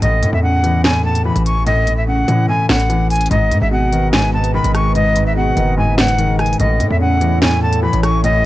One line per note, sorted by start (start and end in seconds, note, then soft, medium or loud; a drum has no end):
0.02 0.24 A1 loud
0.02 0.21 A2 medium
0.02 0.31 D#5 medium
0.02 closed hi-hat medium
0.22 0.83 A2 medium
0.22 0.32 A2 loud
0.22 closed hi-hat medium
0.33 1.32 E2 loud
0.33 0.42 E5 medium
0.43 1.46 C#3 medium
0.43 0.82 F#5 medium
0.64 1.24 E3 medium
0.64 closed hi-hat medium
0.84 1.02 A2 medium
0.84 1.02 G#5 medium
0.84 snare loud
0.84 clap medium
1.04 1.65 A2 medium
1.04 1.23 A5 medium
1.15 closed hi-hat medium
1.25 2.26 E3 medium
1.25 1.43 B5 medium
1.36 2.24 A1 loud
1.36 closed hi-hat medium
1.46 1.64 C#6 medium
1.46 closed hi-hat medium
1.66 1.86 A2 loud
1.66 1.95 D#5 loud
1.66 closed hi-hat medium
1.87 2.47 A2 medium
1.87 closed hi-hat medium
1.97 2.06 E5 medium
2.08 3.10 C#3 medium
2.08 2.46 F#5 medium
2.28 2.48 A2 loud
2.28 2.88 E3 medium
2.28 closed hi-hat medium
2.48 2.68 A2 medium
2.48 2.66 G#5 medium
2.69 3.28 A1 loud
2.69 3.31 A2 medium
2.69 3.08 F#5 medium
2.69 snare loud
2.69 clap loud
2.80 closed hi-hat medium
2.90 3.31 E3 medium
2.90 closed hi-hat medium
3.10 3.28 G#5 medium
3.10 closed hi-hat medium
3.10 open hi-hat medium
3.16 closed hi-hat medium
3.21 closed hi-hat medium
3.26 closed hi-hat medium
3.31 3.53 G#1 loud
3.31 3.50 G#2 medium
3.31 6.56 G#3 medium
3.31 6.56 G#4 medium
3.31 6.56 B4 medium
3.31 6.56 D#5 medium
3.31 3.60 D#5 medium
3.31 closed hi-hat medium
3.51 4.11 G#2 medium
3.51 3.61 G#2 loud
3.51 closed hi-hat medium
3.61 4.60 G#1 loud
3.61 3.70 E5 medium
3.71 4.74 B2 loud
3.71 4.11 F#5 medium
3.93 4.53 D#3 medium
3.93 closed hi-hat medium
4.12 4.33 G#2 medium
4.12 4.30 G#5 medium
4.12 snare loud
4.12 clap medium
4.34 4.94 G#2 medium
4.34 4.51 A5 medium
4.44 closed hi-hat medium
4.54 5.55 D#3 loud
4.54 4.72 B5 medium
4.64 5.53 G#1 loud
4.64 closed hi-hat medium
4.75 4.93 C#6 medium
4.75 cross-stick loud
4.75 closed hi-hat medium
4.95 5.15 G#2 medium
4.95 5.24 D#5 loud
4.95 closed hi-hat medium
5.16 5.76 G#2 medium
5.16 closed hi-hat medium
5.27 5.35 E5 medium
5.36 6.39 B2 medium
5.36 5.75 F#5 medium
5.56 6.56 F#1 loud
5.56 6.17 D#3 medium
5.56 closed hi-hat medium
5.77 5.97 G#2 medium
5.77 5.95 G#5 medium
5.98 6.60 G#2 medium
5.98 6.36 F#5 medium
5.98 snare loud
5.98 clap loud
6.08 closed hi-hat medium
6.19 6.60 D#3 medium
6.19 closed hi-hat medium
6.39 6.57 G#5 medium
6.39 cross-stick medium
6.39 closed hi-hat soft
6.46 closed hi-hat medium
6.53 closed hi-hat medium
6.59 6.82 A1 loud
6.59 6.78 A2 medium
6.59 8.46 A3 medium
6.59 8.46 E4 medium
6.59 8.46 A4 medium
6.59 8.46 C#5 medium
6.59 6.89 D#5 medium
6.59 closed hi-hat medium
6.80 7.41 A2 medium
6.80 6.90 A2 loud
6.80 closed hi-hat medium
6.91 7.89 E2 loud
6.91 6.99 E5 medium
7.00 8.03 C#3 medium
7.00 7.39 F#5 medium
7.21 7.81 E3 medium
7.21 closed hi-hat medium
7.42 7.60 A2 medium
7.42 7.60 G#5 medium
7.42 snare loud
7.42 clap medium
7.61 8.22 A2 medium
7.61 7.80 A5 medium
7.73 closed hi-hat medium
7.83 8.46 E3 medium
7.83 8.01 B5 medium
7.93 8.46 A1 loud
7.93 closed hi-hat medium
8.03 8.21 C#6 medium
8.03 cross-stick loud
8.03 closed hi-hat medium
8.24 8.43 A2 loud
8.24 8.46 D#5 loud
8.24 closed hi-hat medium